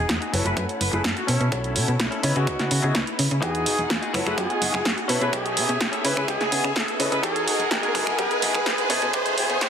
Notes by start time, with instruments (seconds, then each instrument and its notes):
Already playing: string section D#4 G#4 F#5, horn section G#4, riser
0.09 fm bass E2, kick, snare, closed hi-hat
0.20 clean electric guitar D#4 F#4 G#4, closed hi-hat
0.32 fm bass F#1, grand piano A3 C#4 E4 B4, clean electric guitar E4 F#4 A4, string section E4 A4 F#5, open hi-hat
0.45 fm bass F#1, grand piano A3 C#4 E4 G#5, horn section B4, closed hi-hat
0.57 fm bass F#2, horn section B4, kick, closed hi-hat
0.69 closed hi-hat
0.80 fm bass F#1, horn section B4, muted clean electric guitar stroke, open hi-hat
0.92 fm bass F#1, grand piano A3 C#4 E4 G#4, horn section B4, muted clean electric guitar stroke, closed hi-hat
1.03 fm bass F#2, muted clean electric guitar stroke, kick, snare, closed hi-hat
1.17 horn section F#4, closed hi-hat
1.27 fm bass B2, clean electric guitar C#4 E4 A4, horn section C#4, string section C#4 E4, open hi-hat
1.40 fm bass B2, closed hi-hat
1.52 fm bass B1, grand piano A3 C#4 E4 F#4, kick, closed hi-hat
1.64 closed hi-hat
1.75 fm bass B2, grand piano A3 C#4 E4 F#4, open hi-hat
1.88 fm bass B2, closed hi-hat
2.00 fm bass B1, kick, snare, closed hi-hat
2.11 clean electric guitar C#4 E4 A4, closed hi-hat
2.22 fm bass C#3, grand piano B3 D#4 E4 C#5, clean electric guitar C#4 E4 B4, string section C#4 B4, open hi-hat
2.35 fm bass C#3, grand piano B3 E4 G#4 D#5, horn section F#4, closed hi-hat
2.47 fm bass C#2, kick, closed hi-hat
2.59 fm bass C#3, snare, closed hi-hat
2.70 fm bass C#3, muted clean electric guitar stroke, open hi-hat
2.82 fm bass C#3, grand piano B3 D#4 E4 G#4, muted clean electric guitar stroke, closed hi-hat
2.95 fm bass C#2, kick, snare, closed hi-hat
3.07 closed hi-hat
3.19 fm bass C#3, open hi-hat
3.31 fm bass C#3, closed hi-hat
3.42 fm bass E2, grand piano B3 D#4 F#4 G#4, clean electric guitar D#4 F#4 G#4, string section D#4 G#4 F#5, horn section G#4, kick, closed hi-hat
3.55 closed hi-hat
3.66 fm bass E1, grand piano B3 D#4 F#4 G#4, open hi-hat
3.79 fm bass E1, closed hi-hat
3.90 fm bass E2, kick, snare, closed hi-hat
4.02 clean electric guitar D#4 F#4 G#4, closed hi-hat
4.13 fm bass F#1, grand piano A3 C#4 E4 B4, string section A3 E4, clean electric guitar E4 F#4 A4, finger snap, open hi-hat
4.25 fm bass F#1, grand piano A3 C#4 E4 G#4, horn section B4, finger snap, closed hi-hat
4.37 fm bass F#2, grand piano B3 D#4 F#4 G#4, horn section G#4, kick, closed hi-hat
4.50 closed hi-hat
4.61 fm bass F#1, grand piano B3 D#4 F#4 G#4, muted clean electric guitar stroke, open hi-hat
4.73 fm bass F#1, finger snap, muted clean electric guitar stroke
4.84 fm bass F#2, muted clean electric guitar stroke, kick, snare, closed hi-hat
4.98 closed hi-hat
5.08 fm bass B2, grand piano A3 C#4 E4 B4, string section A3 C#4 E5, clean electric guitar C#4 E4 A4, open hi-hat
5.21 fm bass B2, grand piano A3 C#4 E4 G#4, horn section B4, closed hi-hat
5.33 fm bass B1, grand piano B3 D#4 F#4 G#4, horn section G#4, kick, closed hi-hat
5.46 closed hi-hat
5.57 fm bass B2, grand piano B3 D#4 F#4 G#4, open hi-hat
5.69 fm bass B2, closed hi-hat
5.81 fm bass B1, kick, snare, closed hi-hat
5.92 clean electric guitar C#4 E4 A4, closed hi-hat
6.03 fm bass C#3, grand piano G#3 C#4 E4 B4, clean electric guitar C#4 E4 B4, string section B4, open hi-hat
6.17 fm bass C#3, grand piano G#3 C#4 E4 G#4, horn section B4, finger snap
6.28 fm bass C#2, grand piano B3 D#4 F#4 G#4, horn section G#4, kick, closed hi-hat
6.41 fm bass C#3, snare, closed hi-hat
6.51 fm bass C#3, grand piano B3 D#4 F#4 G#4, clean electric guitar G#5, muted clean electric guitar stroke, open hi-hat
6.63 fm bass C#3, finger snap, muted clean electric guitar stroke
6.75 fm bass C#2, clean electric guitar E5, muted clean electric guitar stroke, kick, snare, closed hi-hat
6.88 closed hi-hat
6.99 fm bass C#3, grand piano G#3 C#4 E4 B4, clean electric guitar D#5, open hi-hat
7.11 fm bass C#3, grand piano G#3 C#4 E4 G#4, horn section B4, closed hi-hat
7.23 fm bass E2, grand piano B3 D#4 F#4 G#4, clean electric guitar D#4 F#4 G#4, string section D#4 G#4 F#5, horn section G#4, kick, closed hi-hat
7.36 closed hi-hat
7.47 fm bass E1, grand piano B3 D#4 F#4 G#4, open hi-hat
7.59 fm bass E1, closed hi-hat
7.71 fm bass E2, grand piano B3 D#4 F#4 G#4, horn section G#4, kick, snare, closed hi-hat
7.82 clean electric guitar D#4 F#4 G#4, closed hi-hat
7.94 fm bass F#1, string section A3 E4 F#5, grand piano B3 D#4 F#4 G#4, clean electric guitar E4 F#4 A4, finger snap, open hi-hat
8.07 fm bass F#1, finger snap
8.18 fm bass F#2, grand piano B3 D#4 F#4 G#4, horn section G#4, kick, closed hi-hat
8.31 closed hi-hat
8.42 fm bass F#1, grand piano B3 D#4 F#4 G#4, muted clean electric guitar stroke, open hi-hat
8.54 fm bass F#1, finger snap, muted clean electric guitar stroke, closed hi-hat
8.66 fm bass F#2, grand piano B3 D#4 F#4 G#4, horn section G#4, muted clean electric guitar stroke, kick, snare, closed hi-hat
8.78 closed hi-hat
8.89 fm bass B2, grand piano B3 D#4 F#4 G#4, clean electric guitar C#4 E4 A4, string section C#4 E5, open hi-hat
9.02 fm bass B2, closed hi-hat
9.13 grand piano B3 D#4 F#4 G#4, horn section G#4, kick, closed hi-hat
9.26 closed hi-hat
9.37 fm bass B2, grand piano B3 D#4 F#4 G#4, horn section G#4, open hi-hat
9.50 fm bass B2, closed hi-hat
9.61 fm bass B1, grand piano B3 D#4 F#4 G#4, horn section G#4, kick, snare, closed hi-hat